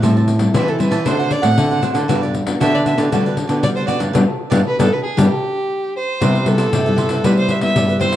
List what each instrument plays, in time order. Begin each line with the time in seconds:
0.02 nylon-string guitar A2 G3 C4 E4, cavaquinho G4 C5 E5 A5, pandeiro
0.16 cavaquinho C5 E5 A5, pandeiro
0.27 muted cavaquinho stroke, pandeiro
0.39 nylon-string guitar G3 C4 E4, pandeiro
0.54 nylon-string guitar E3, cavaquinho G4 C5 E5 A5, fiddle B4, pandeiro
0.67 fiddle A4, cavaquinho C5 E5 A5, pandeiro
0.78 nylon-string guitar G3 C4 E4, cavaquinho G4 C5 E5 A5, fiddle B4, pandeiro
0.91 nylon-string guitar E3, cavaquinho C5 E5 A5, pandeiro
1.05 nylon-string guitar D3 A3 C4 F#4, cavaquinho D4 A4 C5 F#5, fiddle C5, pandeiro
1.19 cavaquinho A4 C5 F#5, pandeiro
1.30 fiddle D5, muted cavaquinho stroke, pandeiro
1.42 nylon-string guitar A2 A3 C4 F#4, cavaquinho A4 C5 F#5, fiddle F#5, pandeiro
1.58 nylon-string guitar A2 D3, pandeiro
1.71 cavaquinho A4 C5 F#5, pandeiro
1.82 nylon-string guitar A3 C4 F#4, cavaquinho D4 A4 C5 F#5, pandeiro
1.93 nylon-string guitar D3, cavaquinho A4 C5 F#5, pandeiro
2.08 nylon-string guitar G2 G3 B3 D4 F#4, cavaquinho F#4 G4 B4 D5, pandeiro
2.22 cavaquinho G4 B4 D5, pandeiro
2.34 muted cavaquinho stroke, pandeiro
2.46 nylon-string guitar B3 D4 F#4, pandeiro
2.60 nylon-string guitar D3, cavaquinho F#4 G4 B4 D5, fiddle E5, pandeiro
2.74 cavaquinho G4 B4 D5, fiddle D5, pandeiro
2.86 nylon-string guitar B3 D4 F#4, cavaquinho F#4 G4 B4 D5, fiddle E5, pandeiro
2.98 nylon-string guitar D3, cavaquinho G4 B4 D5, pandeiro
3.12 nylon-string guitar D3 G3 B3 D4 F#4, cavaquinho F#4 G4 B4 D5, pandeiro
3.25 cavaquinho G4 B4 D5, pandeiro
3.37 muted cavaquinho stroke, pandeiro
3.47 nylon-string guitar D3 B3 D4 F#4, cavaquinho G4 B4 D5, pandeiro
3.63 nylon-string guitar D3 G3, fiddle D5, pandeiro
3.76 cavaquinho G4 B4 D5, fiddle C5, pandeiro
3.87 nylon-string guitar B3 D4 F#4, cavaquinho F#4 G4 B4 D5, fiddle D5, pandeiro
3.99 nylon-string guitar G2, cavaquinho G4 B4 D5, pandeiro
4.13 nylon-string guitar G2 G3 B3 D4, cavaquinho G4 B4 D5, pandeiro
4.50 nylon-string guitar G2 G3 B3 D4, cavaquinho G4 B4 D5, pandeiro
4.68 fiddle B4
4.79 nylon-string guitar G2 G3 B3 D4, cavaquinho G4 B4 D5, fiddle A4, pandeiro
4.93 fiddle B4
5.04 fiddle G#4
5.17 nylon-string guitar G2 G3 B3 D4, cavaquinho G4 B4 D5, fiddle G4, pandeiro
5.97 fiddle C5
6.20 nylon-string guitar C3 G3 B3 E4, cavaquinho G4 B4 C5 E5, pandeiro
6.35 pandeiro
6.46 nylon-string guitar G3 B3 E4, cavaquinho G4 B4 C5 E5, fiddle A4, pandeiro
6.58 cavaquinho G4 B4 C5 E5, pandeiro
6.73 nylon-string guitar G2 C3, pandeiro
6.86 nylon-string guitar G3 B3 E4, cavaquinho B4 C5 E5, pandeiro
6.97 cavaquinho G4 B4 C5 E5, pandeiro
7.09 cavaquinho B4 C5 E5, pandeiro
7.24 nylon-string guitar C3 G3 B3 E4, cavaquinho G4 B4 C5 E5, fiddle B4, pandeiro
7.37 fiddle C5, pandeiro
7.48 cavaquinho G4 B4 C5 E5, fiddle E5, pandeiro
7.61 nylon-string guitar G3 B3 E4, fiddle E5, pandeiro
7.76 nylon-string guitar G2 G3, pandeiro
7.88 cavaquinho B4 C5 E5, pandeiro
8.00 nylon-string guitar G3 B3 E4, cavaquinho G4 B4 C5 E5, fiddle C5, pandeiro
8.12 cavaquinho E5, pandeiro